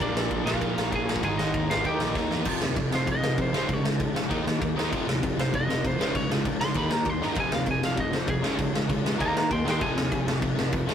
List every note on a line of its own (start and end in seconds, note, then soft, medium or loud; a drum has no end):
0.00 0.13 A#1 loud
0.00 0.45 A#2 medium
0.00 0.45 F3 loud
0.00 0.44 A#3 medium
0.00 0.45 D4 medium
0.00 0.44 D5 medium
0.00 kick medium
0.00 ride medium
0.14 0.29 A#1 medium
0.14 snare loud
0.31 0.44 A#1 medium
0.31 kick loud
0.31 ride medium
0.45 0.60 A#1 loud
0.45 1.23 A#2 medium
0.45 1.22 F3 medium
0.45 1.22 A#3 medium
0.45 0.90 F4 medium
0.45 0.89 F5 medium
0.45 snare loud
0.54 kick medium
0.61 0.76 A#1 medium
0.61 kick loud
0.61 ride medium
0.76 0.91 A#1 medium
0.76 snare loud
0.92 1.21 A#1 medium
0.92 1.23 G#4 medium
0.92 1.23 G#5 medium
0.92 kick loud
0.92 ride medium
1.09 snare loud
1.16 kick loud
1.23 1.38 G#1 medium
1.23 1.69 G#2 medium
1.23 1.69 D#3 medium
1.23 1.68 G#3 medium
1.23 1.38 G#4 medium
1.23 1.40 G#5 medium
1.23 kick loud
1.23 ride medium
1.38 1.53 G#1 medium
1.38 1.68 D#4 medium
1.38 1.67 D#5 medium
1.38 snare loud
1.54 1.69 D#2 medium
1.54 kick loud
1.54 ride medium
1.69 1.84 G#1 medium
1.69 1.85 G#2 medium
1.69 1.83 D#3 medium
1.69 1.84 G#3 medium
1.69 1.84 F4 medium
1.69 1.86 F5 medium
1.69 snare loud
1.77 kick medium
1.84 1.99 D#2 medium
1.84 2.30 D#3 medium
1.84 2.31 A#3 loud
1.84 2.31 D#4 loud
1.84 2.15 G4 medium
1.84 2.14 G5 medium
1.84 kick loud
1.84 ride medium
1.99 2.14 A#1 medium
1.99 snare loud
2.15 2.30 D#2 medium
2.15 kick loud
2.15 snare medium
2.31 2.45 E2 medium
2.31 2.46 D#3 medium
2.31 2.47 A#3 medium
2.31 2.46 D#4 medium
2.31 snare medium
2.45 2.58 F1 medium
2.45 2.61 F2 medium
2.45 2.61 C3 loud
2.45 2.61 F3 loud
2.45 kick loud
2.45 crash loud
2.45 crash medium
2.62 2.74 D#2 medium
2.62 2.76 F2 medium
2.62 2.76 C3 medium
2.62 snare loud
2.76 2.89 F1 medium
2.76 2.92 F2 medium
2.76 2.92 C3 medium
2.76 kick loud
2.76 crash medium
2.90 3.04 F1 loud
2.90 3.05 F2 medium
2.90 snare loud
2.95 3.08 F2 medium
2.95 3.08 C3 medium
2.95 3.09 C5 medium
3.06 3.20 F1 medium
3.06 3.21 C3 medium
3.06 kick loud
3.06 crash medium
3.10 3.22 F2 medium
3.10 3.23 C3 medium
3.10 3.39 D#5 loud
3.23 3.35 F1 medium
3.23 3.37 F2 medium
3.23 3.38 C3 loud
3.23 snare loud
3.38 3.51 F2 medium
3.38 3.52 F2 medium
3.38 3.52 C3 medium
3.38 kick loud
3.38 crash medium
3.42 3.55 C5 medium
3.54 3.67 F1 medium
3.54 3.68 C#3 medium
3.54 3.69 G#3 loud
3.54 3.68 C#4 loud
3.54 snare loud
3.58 3.73 C5 medium
3.68 3.81 F1 medium
3.68 3.84 C#3 medium
3.68 3.84 G#3 medium
3.68 kick loud
3.68 crash medium
3.73 3.86 C#5 loud
3.84 3.97 F1 medium
3.84 3.98 C#3 medium
3.84 3.99 G#3 medium
3.84 snare loud
3.99 4.12 F1 medium
3.99 4.13 C#3 medium
3.99 4.13 G#3 medium
3.99 kick loud
3.99 crash medium
4.14 4.28 F1 medium
4.14 4.28 C#3 medium
4.14 4.29 G#3 medium
4.14 snare loud
4.29 4.43 D#2 medium
4.29 4.44 D#3 loud
4.29 4.44 A#3 loud
4.29 4.45 D#4 loud
4.29 kick loud
4.29 crash medium
4.45 4.59 D#3 medium
4.45 4.59 A#3 medium
4.45 snare loud
4.61 4.74 D#2 medium
4.61 4.75 D#3 medium
4.61 4.75 A#3 medium
4.61 kick loud
4.61 crash medium
4.76 4.89 D#2 medium
4.76 4.91 D#3 medium
4.76 4.91 A#3 medium
4.76 4.91 D#4 medium
4.76 snare loud
4.91 5.04 F1 medium
4.91 5.06 F2 medium
4.91 5.06 C3 medium
4.91 5.07 F3 loud
4.91 kick loud
4.91 crash medium
5.07 5.20 D#2 medium
5.07 5.19 F2 medium
5.07 5.20 C3 medium
5.07 snare loud
5.21 5.35 F1 loud
5.21 5.35 F2 medium
5.21 5.36 C3 medium
5.21 kick loud
5.21 crash medium
5.37 5.51 F1 loud
5.37 5.51 F2 medium
5.37 5.51 C3 medium
5.37 5.54 C5 medium
5.37 snare loud
5.53 5.66 F1 medium
5.53 5.66 F2 medium
5.53 5.67 C3 medium
5.53 5.84 D#5 loud
5.53 kick loud
5.53 crash medium
5.67 5.81 F1 medium
5.67 5.82 F2 medium
5.67 5.82 C3 medium
5.67 snare loud
5.84 5.98 F2 medium
5.84 5.97 F2 medium
5.84 5.97 C3 medium
5.84 6.00 C5 medium
5.84 kick loud
5.84 crash medium
5.98 6.12 F1 medium
5.98 6.13 C#3 medium
5.98 6.13 G#3 loud
5.98 6.13 C#4 loud
5.98 snare loud
6.03 6.15 C5 medium
6.14 6.27 F1 loud
6.14 6.28 C#3 medium
6.14 6.28 G#3 medium
6.14 6.30 C#5 medium
6.14 kick loud
6.14 crash medium
6.29 6.42 F1 medium
6.29 6.44 C#3 medium
6.29 6.44 G#3 medium
6.29 snare loud
6.45 6.58 F1 medium
6.45 6.59 C#3 medium
6.45 6.59 G#3 loud
6.45 kick loud
6.45 crash medium
6.61 6.74 F1 medium
6.61 6.75 C#3 medium
6.61 6.75 G#3 medium
6.61 6.75 C6 loud
6.61 snare loud
6.74 6.88 D#2 medium
6.74 6.89 D#3 loud
6.74 6.89 A#3 loud
6.74 6.90 D#4 loud
6.74 6.92 B5 medium
6.74 kick loud
6.74 crash medium
6.90 7.04 D#3 medium
6.90 7.03 D#3 medium
6.90 7.04 A#3 medium
6.90 7.10 A#5 medium
6.90 snare loud
7.05 7.18 D#2 medium
7.05 7.20 D#3 medium
7.05 7.20 A#3 medium
7.05 kick loud
7.05 crash medium
7.10 7.25 C6 medium
7.22 7.34 G2 medium
7.22 7.36 D#3 loud
7.22 7.36 A#3 medium
7.22 7.37 D#4 loud
7.22 7.38 A#5 medium
7.22 snare medium
7.35 7.49 F1 medium
7.35 7.51 F2 medium
7.35 7.52 C3 medium
7.35 7.52 F3 loud
7.35 kick loud
7.35 crash medium
7.40 7.53 G#5 medium
7.52 7.65 D#2 medium
7.52 7.66 F2 medium
7.52 7.67 C3 medium
7.52 7.68 F5 medium
7.52 snare loud
7.66 7.79 F1 medium
7.66 7.81 F2 medium
7.66 7.82 C3 medium
7.66 kick loud
7.66 crash medium
7.71 7.84 G#5 medium
7.83 7.95 F1 loud
7.83 7.97 F2 medium
7.83 7.97 C3 medium
7.83 7.99 F5 medium
7.83 snare loud
7.97 8.10 F1 medium
7.97 8.12 F2 medium
7.97 8.12 C3 medium
7.97 8.15 D#5 medium
7.97 kick loud
7.97 crash medium
8.12 8.25 F1 medium
8.12 8.27 F2 medium
8.12 8.27 C3 medium
8.12 8.29 C5 loud
8.12 snare loud
8.27 8.41 F2 medium
8.27 8.42 F2 medium
8.27 8.42 C3 medium
8.27 8.89 G#4 medium
8.27 kick loud
8.27 crash medium
8.43 8.56 F1 medium
8.43 8.57 C#3 medium
8.43 8.58 G#3 loud
8.43 8.59 C#4 loud
8.43 snare loud
8.59 8.71 F1 medium
8.59 8.73 C#3 medium
8.59 8.73 G#3 medium
8.59 kick loud
8.59 crash medium
8.74 8.86 F1 medium
8.74 8.89 C#3 medium
8.74 8.89 G#3 medium
8.74 snare loud
8.89 9.02 F1 medium
8.89 9.05 C#3 medium
8.89 9.05 G#3 medium
8.89 kick loud
8.89 crash medium
9.06 9.18 F1 medium
9.06 9.20 C#3 medium
9.06 9.20 G#3 medium
9.06 snare loud
9.20 9.33 D#2 medium
9.20 9.35 D#3 loud
9.20 9.35 A#3 loud
9.20 9.36 D#4 loud
9.20 9.36 F5 medium
9.20 9.36 A#5 loud
9.20 kick loud
9.20 crash medium
9.36 9.49 D#3 medium
9.36 9.48 D#3 medium
9.36 9.50 A#3 medium
9.36 9.51 F5 medium
9.36 9.52 A#5 loud
9.36 snare loud
9.50 9.63 D#2 medium
9.50 9.64 D#3 medium
9.50 9.64 A#3 medium
9.50 9.66 G5 medium
9.50 9.67 C6 medium
9.50 kick loud
9.50 crash medium
9.65 9.79 D#2 medium
9.65 9.80 D#3 loud
9.65 9.80 A#3 loud
9.65 9.81 D#4 loud
9.65 snare loud
9.70 9.81 G5 medium
9.70 9.84 C6 medium
9.81 9.94 F1 medium
9.81 9.95 F2 medium
9.81 9.95 C3 loud
9.81 9.96 F3 loud
9.81 10.71 G#5 medium
9.81 kick loud
9.81 crash medium
9.96 10.09 D#2 medium
9.96 10.10 F2 medium
9.96 10.11 C3 loud
9.96 snare loud
10.11 10.25 F1 medium
10.11 10.26 F2 medium
10.11 10.26 C3 medium
10.11 kick loud
10.11 crash medium
10.28 10.40 F1 loud
10.28 10.42 F2 medium
10.28 10.42 C3 medium
10.28 snare loud
10.41 10.54 F1 medium
10.41 10.57 F2 medium
10.41 10.57 C3 medium
10.41 kick loud
10.41 crash medium
10.57 10.70 F1 medium
10.57 10.72 F2 medium
10.57 10.73 C3 loud
10.57 snare loud
10.72 10.85 F2 medium
10.72 10.88 F2 medium
10.72 10.88 C3 medium
10.72 kick loud
10.72 crash medium
10.88 10.94 F1 medium
10.88 10.94 C#3 loud
10.88 10.94 G#3 loud
10.88 10.94 C#4 loud
10.88 snare loud